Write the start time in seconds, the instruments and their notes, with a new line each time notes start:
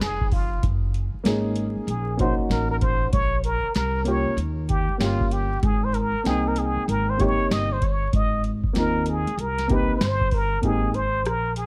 0.00 upright bass F1, muted trumpet G#4, snare, closed hi-hat
0.21 kick
0.32 muted trumpet F4, kick, open hi-hat
0.63 upright bass F#1, kick, closed hi-hat
0.94 closed hi-hat
1.14 muted upright bass stroke
1.24 upright bass G#1, grand piano A#3 C#4 D#4 G#4, snare, closed hi-hat
1.56 closed hi-hat
1.76 muted upright bass stroke
1.87 upright bass A#1, muted trumpet G#4, closed hi-hat
2.17 grand piano A#3 C#4 D#4 F#4, muted trumpet C5, kick, closed hi-hat
2.39 muted upright bass stroke
2.50 upright bass A1, muted trumpet A#4, snare, closed hi-hat
2.71 muted trumpet A#4
2.81 muted trumpet C5, kick, closed hi-hat
3.13 upright bass A#1, muted trumpet C#5, kick, closed hi-hat
3.44 muted trumpet A#4, closed hi-hat
3.64 muted upright bass stroke
3.75 upright bass C2, muted trumpet A#4, snare, closed hi-hat
4.04 grand piano A#3 C#4 F4 G4, muted trumpet C#5, closed hi-hat
4.27 muted upright bass stroke
4.37 upright bass D#2, closed hi-hat
4.69 muted trumpet G4, kick, closed hi-hat
4.89 muted upright bass stroke
4.98 upright bass G1, grand piano A#3 C#4 F4 G4, muted trumpet F4, snare, closed hi-hat
5.21 kick
5.31 muted trumpet G4, closed hi-hat
5.63 upright bass G#1, muted trumpet G#4, kick, closed hi-hat
5.84 muted trumpet C5
5.94 muted trumpet A#4, closed hi-hat
6.14 muted upright bass stroke
6.24 upright bass C2, grand piano A#3 C4 D#4 G5, muted trumpet G#4, snare, closed hi-hat
6.48 muted trumpet A#4
6.56 muted trumpet G#4, closed hi-hat
6.76 muted upright bass stroke
6.88 upright bass G#1, muted trumpet A#4, closed hi-hat
7.10 muted trumpet C5
7.17 grand piano C3 A#3 D#4 G4, muted trumpet C#5, kick, closed hi-hat
7.39 muted upright bass stroke
7.51 upright bass G1, muted trumpet D#5, snare, closed hi-hat
7.72 muted trumpet C5
7.82 muted trumpet C#5, kick, closed hi-hat
8.13 upright bass G#1, muted trumpet D#5, kick, closed hi-hat
8.44 closed hi-hat
8.64 muted upright bass stroke, kick
8.73 upright bass D#2, grand piano A#3 C4 D#4 F4, snare, closed hi-hat
8.78 muted trumpet A#4
9.06 muted trumpet G#4, closed hi-hat
9.27 muted upright bass stroke, closed hi-hat
9.37 upright bass C2, muted trumpet A#4, closed hi-hat
9.58 snare, closed hi-hat
9.68 grand piano A#3 C4 D#4 G4, kick, closed hi-hat
9.72 muted trumpet B4
9.90 muted upright bass stroke
9.97 upright bass G1, muted trumpet B4, snare, closed hi-hat
10.03 muted trumpet C5
10.21 kick
10.31 muted trumpet A#4, kick, open hi-hat
10.62 upright bass G#1, grand piano A#3 C4 D#4 G4, muted trumpet G#4, kick, closed hi-hat
10.94 muted trumpet C5, closed hi-hat
11.26 upright bass A#1, muted trumpet A#4, cross-stick, closed hi-hat
11.56 muted trumpet G#4, closed hi-hat